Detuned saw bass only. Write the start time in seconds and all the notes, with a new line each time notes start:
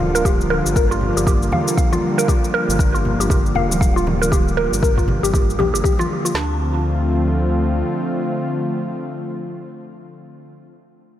Already playing: D1
0.66 G1
1.17 G1
2.69 G1
3.20 G1
3.55 F1
3.70 D1
4.72 G1
5.23 G1
5.59 A#1
5.74 G1
6.35 D2